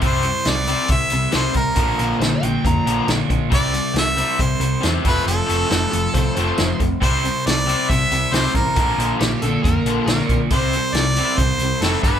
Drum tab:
HH |x-x-x-x-x-x-x-x-|x-x-x-x-x-x-x-x-|x-x-x-x-x-x-x-x-|x-x-x-x-x-x-x-x-|
SD |----o-------o---|----o-------o---|----o-------o---|----o-------o---|
BD |o-------o-----o-|o-------o-----o-|o-------o-----o-|--------o-----o-|

HH |x-x-x-x-x-x-x-x-|x-x-x-x-x-x-x-x-|x-x-x-x-x-x-x-x-|
SD |----o-------o---|----o-------oo--|----o-------o---|
BD |o-------o-----o-|o-------o-----o-|o-------o-----o-|